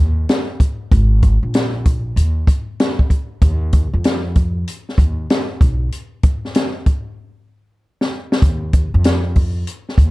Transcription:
0.00 0.24 D#2 medium
0.29 snare loud
0.29 closed hi-hat medium
0.60 kick medium
0.60 closed hi-hat medium
0.91 1.36 G#1 loud
0.91 kick medium
0.91 closed hi-hat medium
1.23 kick medium
1.23 closed hi-hat medium
1.43 2.13 A#1 medium
1.54 snare loud
1.54 closed hi-hat medium
1.85 kick medium
1.85 closed hi-hat medium
2.16 2.43 D#2 medium
2.16 closed hi-hat medium
2.47 kick medium
2.47 closed hi-hat medium
2.80 snare loud
2.80 closed hi-hat medium
2.99 kick medium
3.10 kick medium
3.10 closed hi-hat medium
3.42 3.86 D#2 loud
3.42 kick medium
3.42 closed hi-hat medium
3.73 kick loud
3.73 closed hi-hat medium
3.93 4.63 F2 medium
4.04 snare loud
4.04 closed hi-hat loud
4.35 kick medium
4.35 closed hi-hat medium
4.67 closed hi-hat medium
4.89 snare soft
4.98 5.25 D#2 medium
4.98 kick medium
4.98 closed hi-hat medium
5.30 snare loud
5.30 closed hi-hat medium
5.61 5.87 B1 medium
5.61 kick loud
5.61 closed hi-hat medium
5.92 closed hi-hat medium
6.23 kick loud
6.23 closed hi-hat medium
6.45 snare soft
6.55 snare loud
6.55 closed hi-hat loud
6.86 kick medium
6.86 closed hi-hat medium
8.01 snare medium
8.32 snare medium
8.42 8.86 D#2 loud
8.42 kick medium
8.42 closed hi-hat medium
8.73 kick medium
8.73 closed hi-hat medium
8.94 9.63 F2 medium
9.04 snare loud
9.04 closed hi-hat loud
9.36 kick medium
9.36 open hi-hat soft
9.67 closed hi-hat medium
9.89 snare soft
9.98 10.11 D#2 medium
9.98 kick medium
9.98 closed hi-hat medium

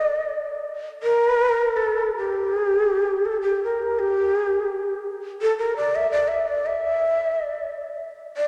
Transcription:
0.00 0.62 D5 medium
1.03 1.78 A#4 loud
1.76 2.16 A4 medium
2.17 3.27 G4 medium
3.26 3.41 A4 medium
3.41 3.65 G4 medium
3.64 3.82 A#4 medium
3.82 4.01 A#4 medium
3.99 5.02 G4 medium
5.42 5.56 A4 medium
5.58 5.74 A#4 medium
5.76 5.97 D5 medium
5.96 6.11 E5 medium
6.11 6.29 D5 medium
6.28 6.49 E5 medium
6.48 6.68 D5 medium
6.66 7.33 E5 medium
7.33 7.50 D#5 medium
7.50 7.97 D5 medium
8.37 8.48 D5 medium

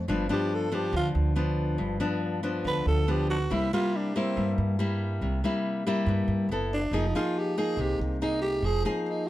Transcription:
0.08 0.28 G1 medium
0.08 0.92 G2 medium
0.08 0.26 F3 medium
0.08 0.27 B3 medium
0.08 0.27 D4 medium
0.29 0.69 F3 medium
0.29 0.69 B3 medium
0.29 0.69 D4 medium
0.29 0.56 G4 medium
0.54 0.76 A4 medium
0.72 1.33 F3 medium
0.72 1.33 B3 medium
0.72 1.33 D4 medium
0.72 0.95 G4 medium
0.93 1.13 D2 loud
0.93 1.77 D3 medium
0.93 1.09 F4 medium
1.15 1.75 D2 medium
1.36 1.97 F3 medium
1.36 1.97 B3 medium
1.36 1.97 D4 medium
1.78 1.99 G1 medium
1.78 2.62 G2 medium
2.00 2.40 F3 medium
2.00 2.40 B3 medium
2.00 2.40 D4 medium
2.43 3.04 F3 medium
2.43 3.04 B3 medium
2.43 3.04 D4 medium
2.64 2.85 D2 medium
2.64 3.48 D3 medium
2.64 2.86 B4 medium
2.86 3.46 D2 medium
2.86 3.12 A4 medium
3.08 3.36 F3 medium
3.08 3.36 B3 medium
3.08 3.36 D4 medium
3.08 3.29 G4 medium
3.30 3.55 F#4 medium
3.50 3.71 C2 loud
3.50 4.34 C3 medium
3.50 3.68 G3 medium
3.50 3.69 A#3 medium
3.50 3.69 E4 medium
3.50 3.72 E4 medium
3.73 4.12 G3 medium
3.73 4.12 A#3 medium
3.73 4.12 E4 medium
3.73 3.97 F4 medium
3.96 4.16 D4 medium
4.16 4.76 G3 medium
4.16 4.76 A#3 medium
4.16 4.55 C4 medium
4.16 4.76 E4 medium
4.37 4.56 G2 medium
4.37 5.20 G2 medium
4.58 5.18 G2 medium
4.79 5.39 G3 medium
4.79 5.40 A#3 medium
4.79 5.40 E4 medium
5.21 5.41 C2 medium
5.21 6.05 C3 medium
5.44 5.83 G3 medium
5.44 5.83 A#3 medium
5.44 5.83 E4 medium
5.87 6.47 G3 medium
5.87 6.47 A#3 medium
5.87 6.47 E4 medium
6.06 6.26 G2 loud
6.06 6.48 G2 medium
6.28 6.48 G2 loud
6.49 6.89 F#1 loud
6.49 6.79 B3 medium
6.49 6.79 E4 medium
6.49 6.79 A4 medium
6.74 6.97 D4 medium
6.91 7.12 F1 medium
6.91 7.76 F3 medium
6.91 7.05 A#3 medium
6.91 7.05 D#4 medium
6.91 7.06 G#4 medium
6.96 7.15 D#4 medium
7.15 7.54 A#3 medium
7.15 7.54 D#4 medium
7.15 7.40 F4 medium
7.15 7.54 G#4 medium
7.39 7.59 G4 medium
7.58 8.18 A#3 medium
7.58 8.18 D#4 medium
7.58 7.82 G#4 medium
7.58 8.18 G#4 medium
7.77 7.97 C2 loud
7.77 8.62 C3 medium
7.77 8.01 G4 medium
7.99 8.59 C2 medium
7.99 8.17 C4 medium
8.22 8.64 A#3 medium
8.22 8.64 D#4 medium
8.22 8.41 D#4 medium
8.22 8.64 G#4 medium
8.42 8.66 G4 medium
8.62 8.83 F1 loud
8.62 9.29 F3 medium
8.62 8.85 G#4 medium
8.85 9.24 A#3 medium
8.85 9.01 C4 medium
8.85 9.24 D#4 medium
8.85 9.25 G#4 medium
9.08 9.29 D#4 medium

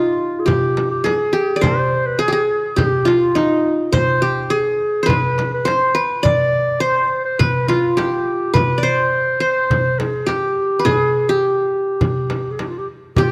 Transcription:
0.00 1.05 D#4 medium
0.00 0.41 F4 medium
0.00 1.22 F4 medium
0.00 0.45 G4 medium
0.40 0.48 G#4 medium
0.46 1.10 G4 medium
0.46 0.90 G4 medium
0.46 frame drum medium
0.46 darbuka dum medium
0.77 frame drum medium
0.91 1.07 G4 medium
1.04 1.39 G#4 medium
1.04 1.65 G#4 medium
1.04 darbuka tek medium
1.04 frame drum medium
1.33 2.25 G4 medium
1.56 2.55 D5 medium
1.61 2.67 C5 medium
1.61 2.08 C5 medium
1.61 darbuka dum medium
1.61 frame drum medium
1.92 darbuka ka soft
2.06 2.21 B4 medium
2.19 2.32 G#4 medium
2.19 2.34 G#4 medium
2.28 2.38 G4 medium
2.32 2.82 G#4 medium
2.32 2.75 G#4 medium
2.76 4.02 G4 medium
2.76 3.10 G4 medium
2.76 darbuka dum medium
2.76 frame drum medium
3.05 4.40 F4 medium
3.05 3.38 F4 medium
3.05 darbuka tek medium
3.05 frame drum medium
3.35 4.79 D#4 medium
3.35 3.79 D#4 medium
3.35 darbuka tek medium
3.35 frame drum medium
3.92 4.98 C5 medium
3.92 4.24 C5 medium
3.92 darbuka dum medium
3.92 frame drum medium
4.22 4.56 G4 medium
4.22 4.53 G4 medium
4.22 darbuka ka soft
4.50 5.70 G#4 medium
4.50 5.12 G#4 medium
5.03 5.71 B4 medium
5.03 5.12 C5 medium
5.09 5.53 B4 medium
5.09 darbuka dum medium
5.09 frame drum medium
5.38 darbuka tek medium
5.38 frame drum medium
5.54 5.69 B4 medium
5.65 6.01 C5 medium
5.65 5.96 C5 medium
5.65 darbuka tek medium
5.65 frame drum medium
5.95 6.86 B4 medium
6.23 7.21 D5 medium
6.23 6.78 D5 medium
6.23 frame drum medium
6.23 darbuka dum medium
6.40 darbuka ka soft
6.54 darbuka ka soft
6.69 darbuka ka soft
6.80 7.45 C5 medium
6.80 7.22 C5 medium
7.25 7.41 C5 medium
7.39 7.70 B4 medium
7.39 8.49 B4 medium
7.39 frame drum medium
7.39 darbuka dum medium
7.68 7.98 F4 medium
7.68 9.03 F4 medium
7.68 darbuka tek medium
7.68 frame drum medium
7.97 8.56 G4 medium
7.97 9.22 G4 medium
7.97 darbuka tek medium
7.97 frame drum medium
8.27 darbuka ka soft
8.54 8.89 B4 medium
8.54 8.85 B4 medium
8.54 darbuka dum loud
8.54 frame drum medium
8.78 9.76 D5 medium
8.83 9.40 C5 medium
8.83 9.41 C5 medium
9.40 10.46 C5 medium
9.40 10.01 C5 medium
9.71 darbuka dum medium
9.71 frame drum medium
9.99 10.29 G#4 medium
9.99 darbuka tek medium
9.99 frame drum medium
10.27 10.91 G4 medium
10.27 10.87 G4 medium
10.27 darbuka tek medium
10.27 frame drum medium
10.79 11.89 B4 medium
10.85 11.35 G#4 medium
10.85 11.30 G#4 medium
10.85 frame drum medium
10.85 darbuka dum medium
11.14 darbuka ka soft
11.29 12.53 G4 medium
11.29 12.84 G4 medium
12.01 frame drum medium
12.01 darbuka dum medium
12.30 darbuka tek medium
12.30 frame drum medium
12.51 12.62 G#4 medium
12.59 12.70 G4 soft
12.59 darbuka tek medium
12.59 frame drum medium
12.69 12.80 F4 soft
12.78 12.87 G4 medium
13.16 13.25 G4 medium
13.16 13.32 G4 medium
13.16 darbuka dum medium
13.16 frame drum medium
13.23 13.31 F4 medium

